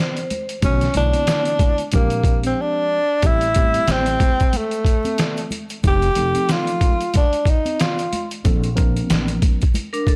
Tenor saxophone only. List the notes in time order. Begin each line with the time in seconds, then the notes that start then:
0.65 C#4
0.97 D4
1.95 A#3
2.46 C4
2.61 D4
3.27 E4
3.91 C4
4.57 A3
5.88 G4
6.52 F4
7.17 D4
7.49 D#4
7.80 F4